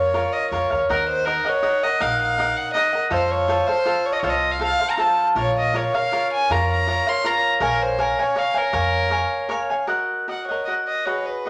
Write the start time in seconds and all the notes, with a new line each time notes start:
Already playing: F2 F4 A#4 C#5 F5
0.14 F4 A#4 C#5 F5
0.33 D#5
0.51 F2 F4 A#4 C#5 F5
0.70 D#2 A#4 C#5 F5
0.89 D#2 D#4 A#4 D#5 F#5
1.10 C5
1.25 D#4 A#4 D#5 F#5
1.45 A#4 C#5 D#5 F#5
1.62 D#4 A#4 D#5 F#5
1.83 A#4 D#5 F#5
2.00 A#1 D#4 A#4 D#5 F5 F#5
2.22 F5
2.38 D#4 A#4 D#5 F#5
2.57 F#5
2.74 D#4 A#4 D#5 F#5
2.93 A#4 D#5 F#5
3.10 F2 F4 A4 C5 F5
3.31 C#5
3.48 F4 A4 C5 F5
3.67 A4 C5 F5
3.85 F4 A4 C5 F5
4.06 C#5
4.13 D#5
4.20 C2 F4 A4 C#5
4.24 C5 F5
4.29 D#5
4.52 F5
4.59 F4 A4 C5 F5
4.80 A4 C5 F5
4.90 A#5
4.97 F4 A4 C5 F5 A5
5.35 A#1 F4 A#4 C#5 F5
5.59 D#5
5.74 F4 A#4 C#5 F5
5.94 A#4 C#5 F5
6.12 F4 A#4 C#5 F5
6.33 G#5
6.50 F2 F4 A#4 C#5 F5 A#5
6.72 A#5
6.87 F4 A#4 C#5 F5
7.07 A#4 C#5 F5 C6
7.24 F4 A#4 C#5 F5 A#5
7.60 A#1 A#4 C#5 F5 G#5
7.82 C5
7.98 A#4 C#5 F5 G#5
8.19 C#5 F5 G#5
8.35 A#4 C#5 F5 G#5
8.54 A#4 C#5 F5 G#5
8.73 F2 A#4 C#5 F5 G#5
9.10 A#4 C#5 F5 G#5
9.49 A#4 C#5 F5 G#5
9.70 C#5 F5 G#5
9.87 F#4 A#4 D#5 F#5
10.28 F#4 A#4 D#5 F#5
10.47 A#4 C#5 D#5 F#5
10.65 F#4 A#4 D#5
10.69 D#5 F#5
10.88 D#5
11.05 F#4 G#4 B4 C#5 D#5
11.26 B4
11.45 F#4 G#4 D#5